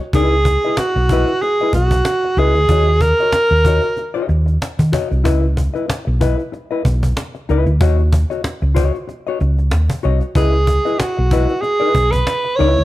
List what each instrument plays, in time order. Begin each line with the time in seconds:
0.01 muted hollow-body jazz guitar stroke
0.13 fingered electric bass C#2, hollow-body jazz guitar E4 B4 D#5, alto saxophone G#4, cajon bass
0.31 muted hollow-body jazz guitar stroke, cajon slap
0.45 muted hollow-body jazz guitar stroke, cajon bass
0.63 hollow-body jazz guitar E4 B4 D#5, cajon slap
0.77 alto saxophone F#4, muted fingered electric bass stroke, muted hollow-body jazz guitar stroke, cajon slap
0.95 fingered electric bass B1, muted hollow-body jazz guitar stroke, cajon slap
1.09 hollow-body jazz guitar E4 B4 D#5, cajon bass
1.27 muted hollow-body jazz guitar stroke, cajon slap
1.41 alto saxophone G#4, muted hollow-body jazz guitar stroke, cajon slap
1.60 hollow-body jazz guitar E4 B4 D#5, cajon slap
1.73 fingered electric bass B1, alto saxophone F#4, muted hollow-body jazz guitar stroke, cajon bass
1.91 muted hollow-body jazz guitar stroke, cajon bass
2.05 cajon slap
2.23 muted hollow-body jazz guitar stroke, cajon slap
2.37 fingered electric bass C#2, hollow-body jazz guitar E4 B4 D#5, alto saxophone G#4, cajon slap
2.55 fingered electric bass D2, muted hollow-body jazz guitar stroke, cajon slap
2.69 fingered electric bass D#2, hollow-body jazz guitar F#4 C#5 D#5, cajon bass
2.87 muted hollow-body jazz guitar stroke, cajon slap
3.01 alto saxophone A#4, muted hollow-body jazz guitar stroke, cajon bass
3.19 hollow-body jazz guitar F#4 C#5 D#5, cajon slap
3.32 muted fingered electric bass stroke, muted hollow-body jazz guitar stroke, cajon slap
3.50 fingered electric bass D#2, muted hollow-body jazz guitar stroke, cajon slap
3.65 hollow-body jazz guitar F#4 C#5 D#5, cajon bass
3.83 muted hollow-body jazz guitar stroke, cajon slap
3.97 muted hollow-body jazz guitar stroke, cajon slap
4.14 hollow-body jazz guitar F#4 C#5 D#5, cajon slap
4.28 fingered electric bass D#2, muted hollow-body jazz guitar stroke, cajon slap
4.46 muted hollow-body jazz guitar stroke, cajon slap
4.62 cajon slap
4.79 fingered electric bass D#3, muted hollow-body jazz guitar stroke, cajon bass
4.92 hollow-body jazz guitar F#4 C#5 D#5, cajon bass
5.11 fingered electric bass C2, muted hollow-body jazz guitar stroke, cajon slap
5.24 fingered electric bass C#2, hollow-body jazz guitar E4 B4 D#5, cajon bass
5.42 muted hollow-body jazz guitar stroke, cajon slap
5.56 muted hollow-body jazz guitar stroke, cajon bass
5.74 hollow-body jazz guitar E4 B4 D#5, cajon slap
5.88 muted hollow-body jazz guitar stroke, muted fingered electric bass stroke, cajon slap
6.05 fingered electric bass B1, muted hollow-body jazz guitar stroke, cajon slap
6.21 hollow-body jazz guitar E4 B4 D#5, cajon bass
6.38 muted hollow-body jazz guitar stroke, cajon slap
6.52 muted hollow-body jazz guitar stroke, cajon slap
6.71 hollow-body jazz guitar E4 B4 D#5, cajon slap
6.85 fingered electric bass B1, muted hollow-body jazz guitar stroke, cajon bass
7.03 muted hollow-body jazz guitar stroke, cajon bass
7.16 cajon slap
7.35 muted hollow-body jazz guitar stroke, cajon slap
7.49 fingered electric bass C#2, hollow-body jazz guitar E4 B4 D#5, cajon slap
7.66 fingered electric bass D2, muted hollow-body jazz guitar stroke, cajon slap
7.81 fingered electric bass D#2, hollow-body jazz guitar F#4 C#5 D#5, cajon bass
7.99 muted hollow-body jazz guitar stroke, cajon slap
8.13 muted hollow-body jazz guitar stroke, cajon bass
8.30 hollow-body jazz guitar F#4 C#5 D#5, cajon slap
8.44 muted hollow-body jazz guitar stroke, muted fingered electric bass stroke, cajon slap
8.61 fingered electric bass C#2, muted hollow-body jazz guitar stroke, cajon slap
8.75 hollow-body jazz guitar F#4 C#5 D#5, cajon bass
8.94 muted hollow-body jazz guitar stroke, cajon slap
9.08 muted hollow-body jazz guitar stroke, cajon slap
9.27 hollow-body jazz guitar F#4 C#5 D#5, cajon slap
9.40 fingered electric bass C#2, muted hollow-body jazz guitar stroke, cajon slap
9.58 muted hollow-body jazz guitar stroke, cajon slap
9.71 fingered electric bass D#2, cajon slap
9.89 muted hollow-body jazz guitar stroke, cajon bass
10.03 fingered electric bass C2, hollow-body jazz guitar F#4 C#5 D#5, cajon slap
10.21 muted hollow-body jazz guitar stroke, cajon slap
10.35 fingered electric bass C#2, hollow-body jazz guitar E4 B4 D#5, alto saxophone G#4, cajon bass
10.53 muted hollow-body jazz guitar stroke, cajon slap
10.67 muted hollow-body jazz guitar stroke, cajon bass
10.85 hollow-body jazz guitar E4 B4 D#5, cajon slap
10.99 alto saxophone F#4, muted hollow-body jazz guitar stroke, muted fingered electric bass stroke, cajon slap
11.17 fingered electric bass B1, muted hollow-body jazz guitar stroke, cajon slap
11.31 hollow-body jazz guitar E4 B4 D#5, cajon bass
11.48 muted hollow-body jazz guitar stroke, cajon slap
11.61 alto saxophone G#4, muted hollow-body jazz guitar stroke, cajon slap
11.80 hollow-body jazz guitar E4 B4 D#5, cajon slap
11.94 fingered electric bass B1, muted hollow-body jazz guitar stroke, cajon bass
12.11 alto saxophone B4, muted hollow-body jazz guitar stroke, cajon bass
12.26 cajon slap
12.45 muted hollow-body jazz guitar stroke, cajon slap
12.56 fingered electric bass C#2, hollow-body jazz guitar E4 B4, alto saxophone C#5, cajon slap
12.60 hollow-body jazz guitar D#5
12.77 fingered electric bass D2, muted hollow-body jazz guitar stroke, cajon slap